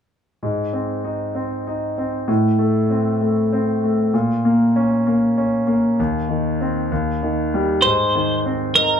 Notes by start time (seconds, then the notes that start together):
0.43 G#2
0.73 C4
1.04 D#4
1.35 C4
1.67 D#4
1.98 C4
2.28 A2
2.59 A3
2.90 C4
3.21 A3
3.53 C4
3.84 A3
4.14 A#2
4.45 A#3
4.76 C#4
5.07 A#3
5.38 C#4
5.67 A#3
5.99 D#2
6.29 D#3
6.61 C4
6.91 D#2
7.22 D#3
7.54 G3
7.82 G#2 C5
8.15 D#3
8.46 C4
8.75 D#4 A#4